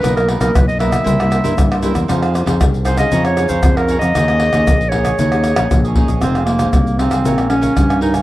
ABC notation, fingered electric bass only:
X:1
M:4/4
L:1/16
Q:1/4=116
K:Ebmix
V:1 name="Fingered electric bass" clef=bass
=B,,,3 B,,, B,,,4 C,,3 G,, G,,3 =E,, | F,,3 F,, C,,4 F,,3 F,, F,,3 F,, | E,,3 E,, B,,,4 E,,3 B,,, B,,,3 B,,, | [K:Fm] F,,,4 C,,3 C,, B,,,4 G,,4 |]